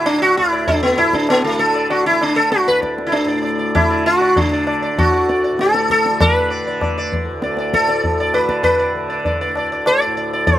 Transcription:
Already playing: D2 A2 D3
0.06 D4, tabla na
0.22 F#4
0.37 D2 E4
0.52 D5
0.67 D4, tabla tin, tabla ge
0.83 B3
0.96 A2 E4, tabla na
1.13 D4, tabla ke
1.29 B3, tabla na
1.44 A3
1.52 D3
1.59 A4
1.75 D5
1.90 F#4, tabla na
2.06 E4
2.11 D3
2.21 D4, tabla na
2.36 A4
2.52 F#4, tabla te
2.67 D2 B4, tabla te
2.82 D5, tabla ke
2.98 tabla te
3.07 E4
3.12 D4, tabla tin
3.25 A2 D5
3.43 D5
3.59 D5
3.75 E4, tabla na, tabla ge
3.82 D3
3.90 D5
4.06 F#4, tabla te
4.21 D5
4.36 D3 D4, tabla tin, tabla ge
4.52 D5
4.67 D5, tabla na
4.82 D5
4.95 D2 F#4, tabla na, tabla ge
5.13 D5
5.29 D5, tabla te
5.44 D5
5.52 A2
5.59 A4, tabla te
5.74 D5, tabla te
5.90 A4, tabla ke
6.06 tabla te
6.10 D3
6.21 B4, tabla na, tabla ge
6.50 D5
6.65 D3 D5
6.81 D5, tabla na, tabla ge
6.98 D5
7.12 D5, tabla ge
7.24 D2
7.42 D5, tabla te
7.57 D5, tabla te
7.74 A4, tabla ke
7.80 A2
7.88 D5, tabla te
8.04 tabla tin, tabla ge
8.20 D5
8.34 D3 B4, tabla na
8.49 D5, tabla ke
8.63 B4, tabla na, tabla ge
8.79 D5
8.93 D3
9.10 D5
9.25 D5, tabla tin, tabla ge
9.41 D5
9.50 D2
9.56 D5, tabla na
9.72 D5
9.86 D5, tabla na
10.02 D5
10.06 A2
10.17 D5
10.33 D5
10.47 B4, tabla tin, tabla ge

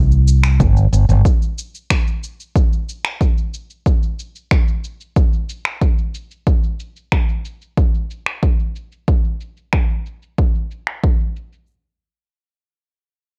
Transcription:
Already playing: C2
0.12 cabasa
0.28 cabasa
0.43 finger snap, cabasa
0.60 G1, kick, cabasa
0.77 cabasa
0.93 G1, cabasa
1.09 G1, cabasa
1.25 kick, cabasa
1.42 cabasa
1.58 cabasa
1.75 cabasa
1.90 finger snap, kick, cabasa
2.07 cabasa
2.23 cabasa
2.40 cabasa
2.56 kick, cabasa
2.73 cabasa
2.89 cabasa
3.05 finger snap, cabasa
3.21 kick, cabasa
3.38 cabasa
3.54 cabasa
3.70 cabasa
3.86 kick, cabasa
4.03 cabasa
4.19 cabasa
4.36 cabasa
4.51 finger snap, kick, cabasa
4.68 cabasa
4.84 cabasa
5.01 cabasa
5.17 kick, cabasa
5.33 cabasa
5.49 cabasa
5.65 finger snap, cabasa
5.82 kick, cabasa
5.99 cabasa
6.15 cabasa
6.31 cabasa
6.47 kick, cabasa
6.64 cabasa
6.80 cabasa
6.96 cabasa
7.12 finger snap, kick, cabasa
7.29 cabasa
7.45 cabasa
7.62 cabasa
7.77 kick, cabasa
7.94 cabasa
8.10 cabasa
8.26 finger snap, cabasa
8.43 kick, cabasa
8.59 cabasa
8.76 cabasa
8.92 cabasa
9.08 kick, cabasa
9.25 cabasa
9.41 cabasa
9.57 cabasa
9.73 finger snap, kick, cabasa
9.90 cabasa
10.06 cabasa
10.22 cabasa
10.38 kick, cabasa
10.55 cabasa
10.71 cabasa
10.87 finger snap, cabasa
11.03 kick, cabasa
11.20 cabasa
11.36 cabasa
11.53 cabasa

